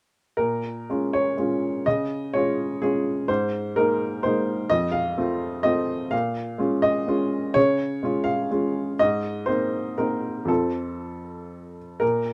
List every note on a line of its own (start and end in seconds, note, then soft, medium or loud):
0.37 0.87 A#2 soft
0.37 1.12 A#4 medium
0.90 1.34 G#3 soft
0.90 1.34 C#4 soft
0.90 1.34 F4 soft
1.13 1.85 C#5 medium
1.38 1.81 G#3 soft
1.38 1.82 C#4 soft
1.38 1.82 F4 soft
1.86 2.33 C#3 soft
1.86 2.33 D#5 medium
2.34 2.78 G#3 soft
2.34 2.78 C#4 soft
2.34 2.78 F4 soft
2.34 2.81 C#5 medium
2.82 3.26 G#3 soft
2.82 3.26 C#4 soft
2.82 3.26 F4 soft
2.82 3.29 G#4 medium
3.28 3.75 G#2 soft
3.28 3.75 C5 medium
3.76 4.20 G#3 soft
3.76 4.20 A#3 soft
3.76 4.21 D#4 soft
3.76 4.23 A#4 medium
4.23 4.67 G#3 soft
4.23 4.67 A#3 soft
4.23 4.67 D#4 soft
4.23 4.70 C5 medium
4.70 5.16 F2 soft
4.70 4.93 D#5 medium
4.92 5.63 F5 medium
5.18 5.61 A3 soft
5.18 5.61 C4 soft
5.18 5.61 F4 soft
5.63 6.08 A3 soft
5.63 6.08 C4 soft
5.63 6.08 F4 soft
5.63 6.11 D#5 medium
6.11 6.59 A#2 soft
6.11 6.84 F5 medium
6.58 7.04 G#3 soft
6.58 7.04 C#4 soft
6.58 7.04 F4 soft
6.82 7.55 D#5 medium
7.08 7.52 G#3 soft
7.08 7.51 C#4 soft
7.08 7.52 F4 soft
7.54 8.02 C#3 soft
7.54 8.26 C#5 medium
8.03 8.47 G#3 soft
8.03 8.47 C#4 soft
8.03 8.48 F4 soft
8.24 8.50 F5 medium
8.51 8.95 G#3 soft
8.51 8.96 C#4 soft
8.51 8.96 F4 soft
8.99 9.48 G#2 soft
8.99 9.48 D#5 medium
9.46 9.94 A#3 soft
9.46 9.94 C4 soft
9.46 9.94 D#4 soft
9.46 9.97 C5 medium
9.98 10.45 A#3 soft
9.98 10.46 C4 soft
9.98 10.46 D#4 soft
9.98 10.49 A#4 medium
10.45 11.96 F2 soft
10.45 11.97 F3 soft
10.45 11.97 C4 soft
10.45 11.76 A4 medium
10.50 11.98 F4 soft
12.00 12.33 A#2 soft
12.00 12.33 A#4 medium